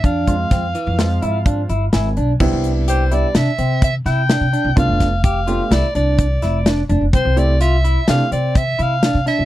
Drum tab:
CC |----------|x---------|----------|----------|
HH |xxxxxxxxxx|-xxxxxxxxx|xxxxxxxxxx|xxxxxxxxxx|
SD |--o-o---o-|----o--oo-|-o--o--oo-|----o---oo|
BD |ooo---o---|o-----o---|ooo---o---|o-----o---|